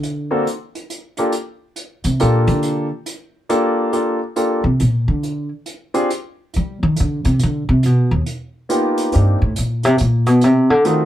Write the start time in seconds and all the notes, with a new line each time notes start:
Already playing: D3
0.03 closed hi-hat
0.31 A#3 C4 D4 F#4 A4
0.47 closed hi-hat
0.75 closed hi-hat
0.90 closed hi-hat
1.17 A#3 D4 F4 G4 A4, closed hi-hat
1.32 closed hi-hat
1.76 closed hi-hat
2.04 C3, closed hi-hat
2.20 A#2 A#3 D4 F4 G4 A4, closed hi-hat
2.47 D3, closed hi-hat
2.62 closed hi-hat
3.06 closed hi-hat
3.49 A#3 D4 F4 G4 A4, closed hi-hat
3.93 A#3 D4 F4 G4 A4, closed hi-hat
4.36 A#3 D4 F4 G4 A4, closed hi-hat
4.64 C3
4.80 A#2, closed hi-hat
5.08 D3
5.23 closed hi-hat
5.66 closed hi-hat
5.94 C4 D4 F4 G4 G#4, closed hi-hat
6.10 closed hi-hat
6.53 G3, closed hi-hat
6.83 D#3
6.96 closed hi-hat
7.00 D3
7.24 C3, closed hi-hat
7.39 closed hi-hat
7.43 D3
7.69 C3
7.83 B2, closed hi-hat
8.11 D#2
8.26 closed hi-hat
8.69 A#3 B3 D#4 F4 G4, closed hi-hat
8.97 closed hi-hat
9.12 G2 A#3 C4 D4 D#4 G4, closed hi-hat
9.42 A2
9.56 A#2, closed hi-hat
9.83 C3, closed hi-hat
9.98 A#2, closed hi-hat
10.26 B2, closed hi-hat
10.41 C3, closed hi-hat
10.70 D3
10.85 D#3 A3 C4 D#4 F4 F#4, closed hi-hat